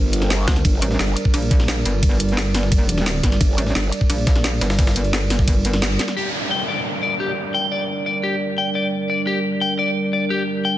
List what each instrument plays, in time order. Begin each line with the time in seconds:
Already playing: wobble bass G1, analog synth pad G3 D4 A#4 C5
0.13 closed hi-hat
0.22 snare, closed hi-hat
0.30 snare, closed hi-hat, ride
0.48 wobble bass D2, kick, snare, closed hi-hat
0.56 snare, closed hi-hat
0.65 wobble bass G1, analog synth pad D5, kick, closed hi-hat, ride
0.82 wobble bass A1, closed hi-hat
0.91 snare
0.99 wobble bass G1, snare, closed hi-hat, ride
1.08 closed hi-hat
1.17 closed hi-hat
1.25 kick
1.34 wobble bass A#1, closed hi-hat, ride
1.42 closed hi-hat
1.51 kick, closed hi-hat
1.60 snare
1.68 snare, closed hi-hat, ride
1.85 wobble bass G1, closed hi-hat
2.03 kick, closed hi-hat, ride
2.11 snare
2.20 closed hi-hat
2.29 closed hi-hat
2.37 snare, closed hi-hat, ride
2.54 snare, closed hi-hat, open hi-hat
2.63 snare
2.72 kick, closed hi-hat, ride
2.84 wobble bass F1
2.89 closed hi-hat
2.98 snare
3.06 wobble bass D#1, snare, closed hi-hat, open hi-hat, ride
3.23 wobble bass G1, kick, snare, closed hi-hat
3.32 snare, closed hi-hat
3.41 wobble bass G1, kick, closed hi-hat, ride
3.58 wobble bass A1, closed hi-hat
3.67 snare
3.75 wobble bass G1, snare, closed hi-hat, ride
3.84 closed hi-hat
3.92 closed hi-hat
4.01 kick
4.10 wobble bass A#1, closed hi-hat, ride
4.18 closed hi-hat
4.27 kick, snare, closed hi-hat
4.36 snare, closed hi-hat
4.44 snare, closed hi-hat, ride
4.61 wobble bass G1, snare, closed hi-hat
4.70 snare, closed hi-hat
4.79 kick, snare, closed hi-hat, ride
4.87 snare, closed hi-hat
4.96 closed hi-hat
5.05 closed hi-hat
5.13 snare, closed hi-hat, ride
5.30 snare, closed hi-hat, open hi-hat
5.39 kick, snare
5.48 kick, closed hi-hat, ride
5.65 closed hi-hat
5.73 snare, closed hi-hat
5.82 snare, closed hi-hat, ride
5.91 closed hi-hat
5.99 snare, closed hi-hat
6.08 snare, closed hi-hat
6.17 analog synth pad G3 D4 A#4 D5, clean electric guitar G4, closed hi-hat, downlifter
6.34 closed hi-hat
6.51 clean electric guitar G5
6.68 clean electric guitar D5
7.03 clean electric guitar D5, closed hi-hat
7.20 clean electric guitar G4, closed hi-hat
7.37 closed hi-hat
7.54 clean electric guitar G5
7.72 clean electric guitar D5, closed hi-hat
7.89 closed hi-hat
8.06 clean electric guitar D5, closed hi-hat
8.23 clean electric guitar G4, closed hi-hat
8.41 closed hi-hat
8.58 clean electric guitar G5, closed hi-hat
8.75 clean electric guitar D5, closed hi-hat
8.92 closed hi-hat
9.10 clean electric guitar D5, closed hi-hat
9.27 clean electric guitar G4, closed hi-hat
9.44 closed hi-hat
9.61 clean electric guitar G5, closed hi-hat
9.79 clean electric guitar D5, closed hi-hat
9.96 closed hi-hat
10.13 clean electric guitar D5, closed hi-hat
10.30 clean electric guitar G4, closed hi-hat
10.48 closed hi-hat
10.65 clean electric guitar G5, closed hi-hat